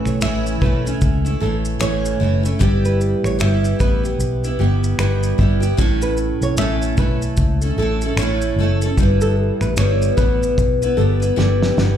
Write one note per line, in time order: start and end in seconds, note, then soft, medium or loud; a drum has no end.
0.00 0.20 A2 medium
0.00 0.21 E3 medium
0.00 0.21 A3 medium
0.00 0.21 C#4 medium
0.00 0.23 E4 medium
0.05 0.19 B1 medium
0.05 0.21 C#5 medium
0.05 finger snap soft
0.05 shaker soft
0.21 0.55 A1 medium
0.21 0.61 A2 medium
0.21 0.60 E3 medium
0.21 0.61 A3 medium
0.21 0.62 C#4 medium
0.21 0.62 E4 medium
0.21 0.60 E5 medium
0.21 finger snap loud
0.21 shaker medium
0.46 shaker soft
0.61 0.94 B1 medium
0.61 0.85 E3 medium
0.61 0.86 A3 medium
0.61 0.85 C#4 medium
0.61 0.84 E4 medium
0.61 0.84 B4 medium
0.61 kick medium
0.85 1.25 A3 soft
0.85 1.25 C#4 medium
0.85 1.23 E4 medium
0.85 shaker soft
1.02 1.34 C#2 medium
1.02 kick medium
1.02 shaker medium
1.25 1.40 A3 soft
1.25 1.41 C#4 soft
1.25 1.41 E4 medium
1.25 shaker soft
1.40 1.74 A1 medium
1.40 1.79 E3 medium
1.40 1.79 A3 medium
1.40 1.79 C#4 medium
1.40 1.80 E4 medium
1.40 1.79 A4 medium
1.65 shaker soft
1.79 2.14 A1 medium
1.79 2.20 A2 medium
1.79 2.19 E3 medium
1.79 2.19 A3 medium
1.79 2.20 C#4 medium
1.79 2.20 E4 loud
1.79 2.41 C#5 medium
1.79 finger snap loud
1.79 shaker medium
2.05 shaker medium
2.20 2.53 F#1 medium
2.20 2.44 E3 medium
2.20 2.44 A3 medium
2.20 2.44 C#4 medium
2.20 2.42 E4 medium
2.43 2.60 A3 soft
2.43 2.60 C#4 soft
2.43 2.59 E4 medium
2.43 shaker medium
2.59 3.13 G1 medium
2.59 3.37 G3 medium
2.59 3.38 B3 medium
2.59 3.40 E4 medium
2.59 3.40 G4 medium
2.59 kick loud
2.59 shaker medium
2.85 3.00 B4 medium
2.85 shaker soft
3.01 shaker soft
3.24 3.37 A1 medium
3.24 3.40 C#5 medium
3.24 finger snap soft
3.24 shaker soft
3.39 3.73 G1 medium
3.39 3.78 G3 medium
3.39 3.79 B3 medium
3.39 3.80 E4 medium
3.39 3.80 G4 loud
3.39 3.78 E5 medium
3.39 finger snap loud
3.39 shaker medium
3.65 shaker soft
3.79 4.13 A1 medium
3.79 4.03 G3 medium
3.79 4.04 B3 medium
3.79 4.04 E4 medium
3.79 4.02 G4 medium
3.79 4.03 B4 medium
3.79 kick medium
3.79 shaker medium
4.03 4.45 B3 soft
4.03 4.44 E4 soft
4.03 4.43 G4 medium
4.03 shaker soft
4.19 4.52 B1 medium
4.19 shaker medium
4.44 4.58 B3 soft
4.44 4.59 E4 medium
4.44 4.59 G4 soft
4.44 shaker soft
4.59 4.92 G1 medium
4.59 4.98 G3 medium
4.59 4.99 B3 medium
4.59 4.99 E4 medium
4.59 4.97 G4 medium
4.59 4.99 G4 medium
4.84 shaker soft
4.99 5.31 G1 medium
4.99 5.37 G3 medium
4.99 5.38 B3 medium
4.99 5.38 E4 medium
4.99 5.39 G4 loud
4.99 5.59 B4 medium
4.99 finger snap loud
4.99 shaker medium
5.23 shaker medium
5.38 5.71 G1 medium
5.38 5.62 G3 medium
5.38 5.61 B3 medium
5.38 5.61 E4 medium
5.38 5.59 G4 medium
5.38 kick medium
5.60 5.78 B3 soft
5.60 5.77 E4 medium
5.60 5.77 G4 medium
5.60 shaker medium
5.77 6.31 A1 loud
5.77 6.56 A2 medium
5.77 6.57 A3 medium
5.77 6.57 C#4 loud
5.77 6.58 E4 medium
5.77 6.58 A4 medium
5.77 kick loud
5.77 shaker medium
6.02 6.18 B4 medium
6.02 shaker medium
6.17 shaker soft
6.41 6.55 B1 medium
6.41 6.58 C#5 medium
6.41 shaker soft
6.57 6.90 A1 medium
6.57 6.98 A2 medium
6.57 6.96 A3 loud
6.57 6.98 C#4 medium
6.57 6.98 E4 medium
6.57 6.99 A4 loud
6.57 6.96 E5 medium
6.57 finger snap loud
6.57 shaker medium
6.82 shaker soft
6.97 7.31 B1 medium
6.97 7.61 A3 medium
6.97 7.62 C#4 medium
6.97 7.62 E4 medium
6.97 7.60 A4 medium
6.97 7.21 B4 medium
6.97 kick medium
6.97 shaker medium
7.22 shaker soft
7.37 7.70 C#2 loud
7.37 kick medium
7.37 shaker medium
7.62 7.78 C#4 soft
7.62 7.78 E4 soft
7.62 7.78 A4 medium
7.62 shaker soft
7.77 8.10 A1 medium
7.77 8.02 A3 medium
7.77 8.02 C#4 medium
7.77 8.02 E4 medium
7.77 8.16 A4 medium
7.77 8.02 A4 medium
8.01 8.18 C#4 soft
8.01 8.18 E4 soft
8.01 8.18 A4 medium
8.01 shaker soft
8.16 8.50 A1 medium
8.16 8.58 A2 loud
8.16 8.57 A3 medium
8.16 8.58 C#4 medium
8.16 8.58 E4 loud
8.16 8.58 A4 loud
8.16 8.78 C#5 medium
8.16 finger snap medium
8.16 shaker medium
8.42 shaker medium
8.56 8.89 F#1 medium
8.56 8.82 A3 medium
8.56 8.82 C#4 medium
8.60 8.83 E4 medium
8.60 8.82 A4 medium
8.82 8.99 C#4 medium
8.82 8.99 E4 soft
8.82 8.98 A4 medium
8.82 shaker medium
8.97 9.50 G1 loud
8.97 9.76 G3 medium
8.97 9.76 B3 medium
8.97 9.78 E4 medium
8.97 9.78 B4 medium
8.97 kick loud
8.97 shaker medium
9.21 9.37 A4 medium
9.21 shaker soft
9.61 9.74 A1 medium
9.61 9.76 B4 medium
9.61 finger snap soft
9.61 shaker soft
9.77 10.10 G1 medium
9.77 10.16 G3 medium
9.77 10.17 B3 medium
9.77 10.17 E4 medium
9.77 10.18 B4 medium
9.77 10.15 C#5 medium
9.77 finger snap loud
9.77 shaker medium
10.02 shaker soft
10.17 10.50 A1 medium
10.17 10.81 G3 medium
10.17 10.81 B3 medium
10.17 10.82 E4 medium
10.17 10.40 B4 medium
10.17 10.81 B4 medium
10.17 kick medium
10.17 shaker medium
10.43 shaker soft
10.58 10.90 B1 medium
10.58 kick medium
10.58 shaker medium
10.82 10.97 B3 soft
10.82 10.97 E4 soft
10.82 10.97 B4 medium
10.82 shaker soft
10.97 11.30 G1 medium
10.97 11.21 G3 medium
10.97 11.21 B3 medium
10.97 11.20 E4 medium
10.97 11.35 A4 medium
10.97 11.19 B4 medium
11.20 11.35 B3 soft
11.20 11.36 E4 soft
11.20 11.36 B4 medium
11.20 shaker soft
11.36 11.70 G1 medium
11.36 11.76 G3 medium
11.36 11.76 B3 medium
11.36 11.77 E4 medium
11.36 11.97 G4 medium
11.36 11.77 B4 medium
11.36 snare medium
11.63 snare medium
11.77 11.97 G1 medium
11.77 11.97 G3 medium
11.77 11.97 B3 medium
11.77 11.97 E4 medium
11.77 11.97 B4 medium
11.77 snare medium